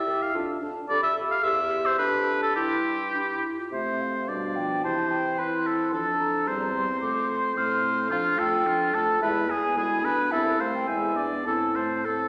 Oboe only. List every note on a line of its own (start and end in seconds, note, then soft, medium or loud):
0.00 0.23 E5 soft
0.22 0.35 F5 soft
0.89 1.02 D5 medium
1.03 1.15 E5 medium
1.31 1.45 F5 medium
1.43 1.88 E5 medium
1.86 1.98 C5 medium
1.99 2.40 B4 medium
2.42 2.55 A4 medium
2.56 3.42 G4 medium
3.72 4.30 C5 soft
4.28 4.84 D5 soft
4.84 5.41 C5 soft
5.39 5.68 B4 soft
5.66 5.92 A4 soft
5.93 6.49 A4 soft
6.47 7.56 C5 soft
7.56 8.10 C5 soft
8.11 8.40 F4 medium
8.39 8.68 A4 soft
8.67 8.96 F4 soft
8.95 9.21 A4 soft
9.22 9.52 B4 medium
9.50 9.77 G#4 soft
9.77 10.06 G#4 soft
10.05 10.32 B4 medium
10.32 10.61 A4 medium
10.60 10.88 C5 soft
10.89 11.18 E5 soft
11.16 11.46 D5 soft
11.47 11.77 A4 soft
11.76 12.07 C5 soft
12.05 12.28 A4 soft